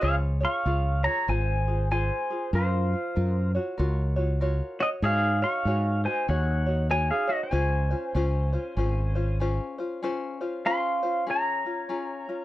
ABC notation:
X:1
M:4/4
L:1/16
Q:"Swing" 1/4=96
K:Db
V:1 name="Pedal steel guitar"
[Af]2 [fd']4 [db]2 [ca]4 [ca]4 | [Fc]6 z8 [Ge]2 | [Af]2 [fd']4 [ca]2 [dg]4 [da] [Af] [Ge] [ca]- | [ca]12 z4 |
z4 [fc']4 [db]8 |]
V:2 name="Ukulele"
[FAcd]2 [FAd]2 [FAd]2 [FAd]2 [FAc]2 [FA]2 [FAc]2 [FA]2 | [FB]2 F2 [FB]2 [FGd]2 [FGBd]2 [FGd]2 [FGBd]2 [Gd]2 | [EGAd]2 [EGd]2 [EGAd]2 [EG]2 [EGAd]2 [EGd]2 [EGAd]2 [EGd]2 | [DFAc]2 [DFc]2 [DFAc]2 [DFc]2 [DFAc]2 [DFc]2 [DFAc]2 [DFc]2 |
[DFAc]2 [DFc]2 [DFAc]2 [DFc]2 [DFA]2 [DF]2 [DFA]2 [DF]2 |]
V:3 name="Fretless electric bass" clef=bass
D,,4 D,,4 A,,,8 | G,,4 G,,4 D,,8 | A,,4 A,,4 E,,8 | D,,4 D,,4 A,,,8 |
z16 |]